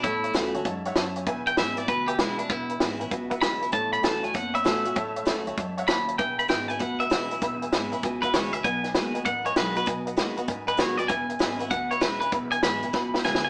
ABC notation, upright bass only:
X:1
M:4/4
L:1/8
Q:"Swing" 1/4=195
K:E
V:1 name="Upright bass" clef=bass
A,,,2 C,, =D,, F,,2 F,,2 | E,,,2 G,,,2 =D,,2 E,,,2 | E,,,2 G,,, A,,, C,,2 =D,,2 | A,,,2 C,,2 F,,,2 A,,,2 |
A,,,2 C,, =D,, F,,2 ^D,,2 | E,,,2 G,,,2 =D,,2 E,,,2 | E,,,2 G,,, A,,, C,,2 =D,,2 | B,,,2 D,,2 A,,,2 B,,,2 |
B,,,2 D,, E,, G,,2 A,,2 | E,,,2 G,,,2 =D,,2 E,,,2 | E,,,2 G,,, A,,, C,,2 =D,,2 |]